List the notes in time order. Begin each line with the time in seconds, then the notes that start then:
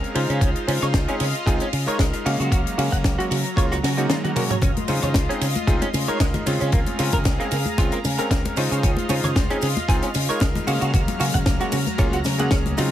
Already playing: G#3 C4 C#4 G#4 A#4 F5 A#5 F6
0.04 closed hi-hat
0.14 C#3 G#3 C#4 D#4 F4 C5 D#5 C6, open hi-hat, ride
0.29 C#3 C#4, closed hi-hat
0.41 C#2 C#4, kick, closed hi-hat
0.56 closed hi-hat
0.67 C#3 G#3 C#4 D#4 F4 C5, open hi-hat, ride
0.82 C#3 C#5, cross-stick, closed hi-hat
0.94 C#2, kick, snare, closed hi-hat
1.08 G#3 C4 C#4 D#4 G#4, closed hi-hat
1.20 C#3 C#4, open hi-hat, ride
1.35 closed hi-hat
1.46 C#2 G#3 C4 D#4 F4 G#4, kick, closed hi-hat
1.60 C#4, closed hi-hat
1.73 C#3, open hi-hat, ride
1.86 G#3 D#4 A#4 C#5, muted fingered electric bass stroke, closed hi-hat
1.99 C#2 G#3, kick, snare, closed hi-hat
2.13 cross-stick, closed hi-hat
2.25 C#3 F#3 G#3 A#3 C#4 F#4 F5 A#5, open hi-hat, ride
2.40 C#3 F#4, closed hi-hat
2.52 C#2 F#4, kick, closed hi-hat
2.67 closed hi-hat
2.77 C#3 G#3 A#3 C#4 F#4 F5, open hi-hat, ride
2.92 F#5, kick, closed hi-hat
3.04 C#2, kick, snare, closed hi-hat
3.18 G#3 A#3 C#4 F#4, closed hi-hat
3.30 C#3 F#4, open hi-hat, ride
3.46 closed hi-hat
3.56 C#2 G#3 A#3 C#4 F4 C#5, kick, closed hi-hat
3.72 F#4, cross-stick, closed hi-hat
3.83 C#3 F#4, snare, open hi-hat, ride
3.97 G#3 A#3 C#4 D#4 F#4, closed hi-hat
4.10 F4, snare, closed hi-hat, high tom
4.24 F#4, closed hi-hat, high tom
4.35 G#3 A#3 C#4 F#4 A#4, open hi-hat, mid tom, ride
4.50 C#5, closed hi-hat, mid tom
4.61 C#2 C#4 F4 D#5 C6, kick, closed hi-hat, low conga, cabasa
4.77 closed hi-hat, high conga
4.88 C#3 G#3 C#4 D#4 F4 C5, open hi-hat, ride, muted conga, cabasa
5.02 C#3 C#5, cross-stick, closed hi-hat, low conga, cabasa
5.14 C#2, kick, snare, closed hi-hat, muted conga, high conga, cabasa
5.28 G#3 C4 C#4 D#4 G#4, closed hi-hat
5.41 C#3 C#4, open hi-hat, ride, cabasa
5.55 closed hi-hat, muted conga, high conga, cabasa
5.67 C#2 G#3 C4 D#4 F4 G#4, kick, closed hi-hat, cabasa
5.82 C#4, closed hi-hat, muted conga
5.94 C#3, open hi-hat, ride, high conga, cabasa
6.08 G#3 D#4 A#4 C#5, muted fingered electric bass stroke, closed hi-hat, cabasa
6.20 C#2 G#3, kick, snare, closed hi-hat, muted conga, cabasa
6.34 cross-stick, closed hi-hat, high conga, low conga
6.46 C#3 G#3 C4 C#4 F4, open hi-hat, ride, muted conga, cabasa
6.60 C#3 C#4, closed hi-hat, cabasa
6.72 C#2 A#3 G#4 F5 A#5 F6, kick, closed hi-hat, low conga, cabasa
6.87 closed hi-hat, muted conga, high conga
6.99 C#3 G#3 A#3 C4 C#4 F4, open hi-hat, ride, cabasa
7.12 C#3 A#4, kick, closed hi-hat, muted conga, low conga, cabasa
7.24 C#2, kick, snare, closed hi-hat, high conga, cabasa
7.40 G#3 A#3 C4 C#4 G#4, closed hi-hat
7.51 C#3 A#3, open hi-hat, ride, muted conga, cabasa
7.66 closed hi-hat, high conga, cabasa
7.78 C#2 G#3 C4 C#4 F4, kick, closed hi-hat, muted conga, cabasa
7.92 A#3, closed hi-hat
8.04 C#3, open hi-hat, ride, high conga, cabasa
8.18 G#3 C4 C#4 A#4, muted fingered electric bass stroke, closed hi-hat, muted conga, cabasa
8.31 C#2 F3, kick, snare, closed hi-hat, cabasa
8.45 closed hi-hat, muted conga, high conga
8.56 C#3 G#3 C#4 D#4 F4 C5 D#5 C6, open hi-hat, ride, cabasa
8.71 C#3 C#4, closed hi-hat, cabasa
8.83 C#2 C#4, kick, closed hi-hat, muted conga, low conga, cabasa
8.97 closed hi-hat, high conga
9.09 C#3 G#3 C#4 D#4 F4 C5, open hi-hat, ride, muted conga, cabasa
9.23 C#3 C#5, cross-stick, closed hi-hat, low conga, cabasa
9.36 C#2, kick, snare, closed hi-hat, high conga, cabasa
9.50 G#3 C4 C#4 D#4 G#4, closed hi-hat, muted conga
9.62 C#3 C#4, open hi-hat, ride, cabasa
9.76 closed hi-hat, muted conga, high conga, cabasa
9.88 C#2 G#3 C4 D#4 F4 G#4, kick, closed hi-hat, cabasa
10.02 C#4, closed hi-hat
10.14 C#3, open hi-hat, ride, muted conga, high conga, cabasa
10.29 G#3 D#4 A#4 C#5, muted fingered electric bass stroke, closed hi-hat, cabasa
10.40 C#2 G#3, kick, snare, closed hi-hat, muted conga, cabasa
10.55 cross-stick, closed hi-hat, high conga, low conga
10.67 C#3 F#3 G#3 A#3 C#4 F#4 F5 A#5, open hi-hat, ride, cabasa
10.81 C#3 F#4, closed hi-hat, muted conga, cabasa
10.93 C#2 F#4, kick, closed hi-hat, low conga, cabasa
11.08 closed hi-hat, muted conga, high conga
11.19 C#3 G#3 A#3 C#4 F#4 F5, open hi-hat, ride, cabasa
11.34 C#3 F#5, kick, closed hi-hat, low conga, cabasa
11.46 C#2, kick, snare, closed hi-hat, muted conga, high conga, cabasa
11.59 G#3 A#3 C#4 F#4, closed hi-hat
11.72 C#3 F#4, open hi-hat, ride, muted conga, cabasa
11.87 closed hi-hat, high conga, cabasa
11.98 C#2 G#3 A#3 C#4 F4 C#5, kick, closed hi-hat, cabasa
12.13 F#4, closed hi-hat, muted conga
12.24 C#3, snare, open hi-hat, ride, high conga, cabasa
12.38 G#3 A#3 C#4 G#4 F#5, closed hi-hat, muted conga, cabasa
12.51 C#2 C#4, kick, snare, closed hi-hat, cabasa
12.66 closed hi-hat, high conga
12.77 C#3 G#3 C4 D#4 F4 F#4, open hi-hat, ride, muted conga, cabasa